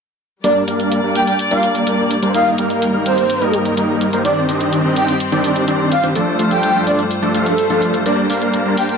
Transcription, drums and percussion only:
0.44 closed hi-hat medium
0.68 closed hi-hat medium
0.80 closed hi-hat soft
0.92 closed hi-hat medium
1.15 closed hi-hat medium
1.27 closed hi-hat soft
1.39 closed hi-hat medium
1.51 closed hi-hat soft
1.63 closed hi-hat medium
1.75 closed hi-hat medium
1.87 closed hi-hat medium
2.11 closed hi-hat medium
2.23 closed hi-hat medium
2.34 closed hi-hat medium
2.58 closed hi-hat medium
2.70 closed hi-hat soft
2.82 closed hi-hat medium
3.06 closed hi-hat medium
3.18 closed hi-hat medium
3.30 closed hi-hat medium
3.42 closed hi-hat soft
3.53 closed hi-hat medium
3.65 closed hi-hat soft
3.77 closed hi-hat medium
4.01 closed hi-hat medium
4.13 closed hi-hat soft
4.25 closed hi-hat medium
4.49 closed hi-hat medium
4.61 closed hi-hat soft
4.73 closed hi-hat medium
4.96 closed hi-hat medium
5.08 closed hi-hat soft
5.20 closed hi-hat medium
5.32 closed hi-hat soft
5.44 closed hi-hat medium
5.56 closed hi-hat soft
5.68 closed hi-hat medium
5.92 closed hi-hat medium
6.04 closed hi-hat soft
6.16 closed hi-hat medium
6.39 closed hi-hat medium
6.51 closed hi-hat soft
6.63 closed hi-hat medium
6.87 closed hi-hat medium
6.99 closed hi-hat soft
7.11 closed hi-hat medium
7.23 closed hi-hat soft
7.35 closed hi-hat medium
7.46 closed hi-hat soft
7.58 closed hi-hat medium
7.70 closed hi-hat soft
7.82 closed hi-hat medium
7.94 closed hi-hat soft
8.06 closed hi-hat medium
8.30 open hi-hat loud
8.42 closed hi-hat soft
8.54 closed hi-hat medium
8.77 open hi-hat loud
8.89 closed hi-hat soft

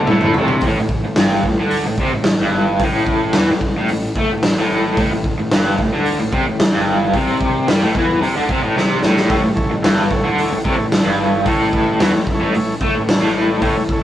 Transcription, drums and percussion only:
0.07 mid tom medium
0.21 mid tom medium
0.34 floor tom loud
0.48 floor tom medium
0.61 kick loud
0.61 open hi-hat medium
0.89 kick medium
1.16 snare loud
1.16 open hi-hat medium
1.43 kick medium
1.71 open hi-hat medium
1.98 kick medium
2.24 snare loud
2.24 open hi-hat medium
2.79 kick loud
2.79 open hi-hat medium
3.07 kick medium
3.33 snare loud
3.33 open hi-hat medium
3.61 kick medium
3.88 open hi-hat medium
4.16 kick medium
4.43 snare loud
4.43 open hi-hat medium
4.97 kick loud
4.97 open hi-hat medium
5.24 kick medium
5.51 snare loud
5.51 open hi-hat medium
5.78 kick medium
6.06 open hi-hat medium
6.33 kick medium
6.60 snare loud
6.60 open hi-hat medium
7.14 kick loud
7.14 open hi-hat medium
7.41 kick medium
7.68 snare loud
7.68 open hi-hat medium
7.95 kick medium
8.23 open hi-hat medium
8.49 kick medium
8.77 snare medium
9.03 snare medium
9.17 snare medium
9.30 kick loud
9.30 open hi-hat medium
9.57 kick medium
9.84 snare loud
9.84 open hi-hat medium
10.11 kick medium
10.38 open hi-hat medium
10.65 kick medium
10.92 snare loud
10.92 open hi-hat medium
11.45 kick loud
11.45 open hi-hat medium
11.73 kick medium
12.00 snare loud
12.00 open hi-hat medium
12.27 kick medium
12.54 open hi-hat medium
12.81 kick medium
13.09 snare loud
13.09 open hi-hat medium
13.62 kick loud
13.62 open hi-hat medium
13.89 kick medium

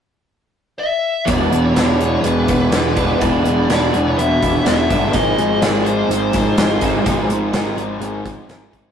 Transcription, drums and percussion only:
1.28 kick loud
1.28 closed hi-hat medium
1.52 closed hi-hat medium
1.76 snare medium
1.76 closed hi-hat medium
2.01 closed hi-hat medium
2.24 closed hi-hat medium
2.48 kick medium
2.48 closed hi-hat medium
2.72 snare loud
2.72 closed hi-hat medium
2.96 kick medium
2.96 closed hi-hat medium
3.21 kick loud
3.21 closed hi-hat medium
3.45 closed hi-hat medium
3.70 snare medium
3.70 closed hi-hat medium
3.94 closed hi-hat medium
4.19 closed hi-hat medium
4.43 kick medium
4.43 closed hi-hat medium
4.66 snare loud
4.66 closed hi-hat medium
4.91 kick medium
4.91 closed hi-hat medium
5.13 kick loud
5.13 closed hi-hat medium
5.38 closed hi-hat medium
5.62 snare loud
5.62 closed hi-hat medium
5.86 closed hi-hat medium
6.11 closed hi-hat medium
6.33 kick medium
6.33 closed hi-hat medium
6.58 snare loud
6.58 closed hi-hat medium
6.81 kick medium
6.81 closed hi-hat medium
7.06 kick loud
7.06 closed hi-hat medium
7.30 closed hi-hat medium
7.54 snare loud
7.54 closed hi-hat medium
7.78 closed hi-hat medium
8.02 closed hi-hat medium
8.26 kick medium
8.26 closed hi-hat medium
8.49 snare loud
8.49 closed hi-hat medium
8.73 kick medium
8.73 closed hi-hat medium

